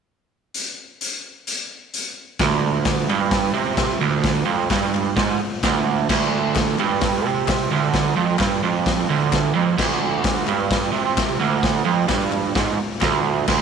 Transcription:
0.54 closed hi-hat medium
1.01 closed hi-hat medium
1.47 closed hi-hat medium
1.94 closed hi-hat medium
2.39 3.09 D2 loud
2.39 kick loud
2.39 snare loud
2.39 open hi-hat medium
2.85 kick loud
2.85 snare loud
2.85 clap medium
2.85 open hi-hat medium
3.09 3.53 G2 loud
3.09 clap medium
3.31 kick loud
3.31 snare loud
3.31 open hi-hat medium
3.54 4.00 C3 loud
3.77 kick loud
3.77 snare loud
3.77 clap medium
3.77 open hi-hat medium
4.01 4.46 D2 loud
4.24 kick loud
4.24 snare loud
4.24 open hi-hat medium
4.46 4.69 F2 loud
4.70 5.16 G2 loud
4.70 kick loud
4.70 snare loud
4.70 clap medium
4.70 open hi-hat medium
4.94 clap medium
5.16 5.39 G#2 loud
5.16 kick loud
5.16 snare loud
5.16 open hi-hat medium
5.63 6.08 D2 loud
5.63 kick loud
5.63 snare loud
5.63 clap medium
5.63 open hi-hat medium
6.09 6.78 D2 loud
6.09 kick loud
6.09 snare loud
6.09 crash loud
6.55 kick loud
6.55 snare loud
6.55 clap loud
6.55 open hi-hat medium
6.79 7.26 G2 loud
6.79 clap medium
7.01 kick loud
7.01 snare loud
7.01 open hi-hat medium
7.26 7.71 C3 loud
7.48 kick loud
7.48 snare loud
7.48 clap loud
7.48 open hi-hat medium
7.71 8.16 D2 loud
7.94 kick loud
7.94 snare loud
7.94 open hi-hat medium
8.16 8.38 F2 loud
8.38 8.62 G2 loud
8.38 kick loud
8.38 snare loud
8.38 clap loud
8.38 open hi-hat medium
8.63 9.09 F2 loud
8.86 kick loud
8.86 snare loud
8.86 open hi-hat medium
9.09 9.55 D2 loud
9.32 kick loud
9.32 snare loud
9.32 clap medium
9.32 open hi-hat medium
9.55 9.77 F2 loud
9.78 10.47 D2 loud
9.78 kick loud
9.78 snare loud
9.78 crash loud
10.24 kick loud
10.24 snare loud
10.24 clap medium
10.24 open hi-hat medium
10.47 10.92 G2 loud
10.47 clap medium
10.71 kick loud
10.71 snare loud
10.71 open hi-hat medium
10.93 11.39 C3 loud
11.17 kick loud
11.17 snare loud
11.17 clap loud
11.17 open hi-hat medium
11.40 11.85 D2 loud
11.63 kick loud
11.63 snare loud
11.63 open hi-hat medium
11.85 12.08 F2 loud
12.08 12.54 G2 loud
12.08 kick loud
12.08 snare loud
12.08 clap loud
12.08 open hi-hat medium
12.32 clap medium
12.55 12.78 G#2 loud
12.55 kick loud
12.55 snare loud
12.55 open hi-hat medium
13.01 13.47 D2 loud
13.01 kick loud
13.01 snare loud
13.01 clap medium
13.01 open hi-hat medium
13.48 13.62 D2 loud
13.48 kick loud
13.48 snare loud
13.48 crash loud

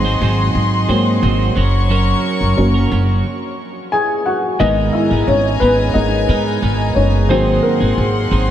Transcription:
0.00 0.15 G#1 medium
0.00 0.17 F#3 medium
0.00 0.17 A#3 soft
0.00 0.18 C4 medium
0.00 1.54 G#4 medium
0.00 1.53 D#5 medium
0.00 3.21 F#5 medium
0.00 1.54 C6 medium
0.04 0.20 F#3 soft
0.04 0.21 C4 medium
0.04 0.21 D#4 medium
0.04 0.22 C5 medium
0.21 0.49 G#1 loud
0.21 0.88 F#3 medium
0.21 0.88 C4 medium
0.21 0.89 D#4 medium
0.21 0.89 C5 medium
0.55 0.83 G#1 medium
0.88 1.17 G#2 medium
0.88 1.19 F#3 soft
0.88 1.21 F#3 medium
0.88 1.19 A#3 soft
0.88 1.19 C4 medium
0.88 1.22 C4 medium
0.88 1.22 D#4 medium
0.88 1.23 C5 medium
1.22 1.50 G#1 loud
1.22 1.54 F#3 medium
1.22 1.56 C4 medium
1.22 1.57 D#4 medium
1.22 1.57 C5 medium
1.56 2.12 F#1 medium
1.56 1.89 F#3 medium
1.56 1.89 C#4 medium
1.56 1.90 F#4 medium
1.56 3.24 A#4 medium
1.56 1.90 A#4 medium
1.56 3.24 C#5 medium
1.56 3.24 C#6 medium
1.90 2.74 F#3 medium
1.90 2.75 C#4 medium
1.90 2.74 F#4 medium
1.90 2.74 A#4 medium
2.41 2.55 F#1 medium
2.57 2.86 F#1 medium
2.57 4.56 F#3 medium
2.57 4.56 A#3 soft
2.57 4.56 C#4 medium
2.74 2.90 C#4 medium
2.74 2.91 F#4 soft
2.74 2.91 A#4 medium
2.91 3.19 F#1 loud
2.91 3.25 F#3 medium
2.91 3.25 C#4 medium
2.91 3.26 F#4 medium
2.91 3.26 A#4 medium
3.92 4.25 G#4 medium
3.92 4.27 G#5 loud
4.26 4.58 F#4 medium
4.26 4.58 F#5 medium
4.60 4.88 G#1 loud
4.60 5.11 G#2 medium
4.60 5.11 D#3 medium
4.60 5.57 G#3 medium
4.60 5.11 G#3 medium
4.60 5.11 B3 medium
4.60 5.58 B3 medium
4.60 5.10 D#4 medium
4.60 4.92 D#4 medium
4.60 8.51 G#4 medium
4.60 5.58 A#4 medium
4.60 5.09 A#4 medium
4.60 4.91 D#5 loud
4.60 7.27 G#5 medium
4.60 7.27 A#5 medium
4.93 5.26 E4 medium
4.93 5.25 E5 medium
5.10 5.25 G#1 medium
5.10 5.60 G#3 soft
5.10 5.60 B3 soft
5.10 5.61 D#4 medium
5.10 5.61 A#4 medium
5.27 5.55 G#1 medium
5.27 5.60 C#4 medium
5.27 5.62 C#5 medium
5.60 5.89 G#1 medium
5.60 6.28 G#3 soft
5.60 6.28 B3 medium
5.60 5.93 B3 medium
5.60 6.30 D#4 medium
5.60 6.29 A#4 medium
5.60 5.96 B4 medium
5.94 6.23 G#1 medium
5.94 6.25 G#3 soft
5.94 6.26 B3 soft
5.94 6.93 D#4 medium
5.94 6.25 A#4 soft
5.94 6.99 D#5 medium
6.29 6.57 G#2 medium
6.29 6.61 G#3 medium
6.29 6.62 B3 medium
6.29 6.62 D#4 medium
6.29 6.63 A#4 medium
6.62 6.90 G#1 loud
6.62 7.30 G#3 medium
6.62 7.30 B3 medium
6.62 7.30 D#4 medium
6.62 7.31 A#4 medium
6.95 7.30 F#1 medium
6.95 7.28 C#4 medium
6.95 7.31 C#5 medium
7.29 7.58 G#1 medium
7.29 7.81 G#2 medium
7.29 7.81 D#3 medium
7.29 8.51 F#3 medium
7.29 7.81 F#3 medium
7.29 7.63 A#3 medium
7.29 7.80 C4 medium
7.29 7.62 C4 medium
7.29 7.80 D#4 medium
7.29 7.79 G#4 medium
7.29 7.64 C5 medium
7.29 8.51 F#5 medium
7.29 8.51 C6 medium
7.63 8.51 A#3 medium
7.63 8.51 A#4 medium
7.80 7.95 G#1 medium
7.80 8.30 F#3 soft
7.80 8.30 C4 soft
7.80 8.31 D#4 medium
7.80 8.31 G#4 medium
7.98 8.25 G#1 medium
8.31 8.51 G#1 medium
8.31 8.51 F#3 medium
8.31 8.51 C4 medium
8.31 8.51 D#4 medium
8.31 8.51 G#4 medium

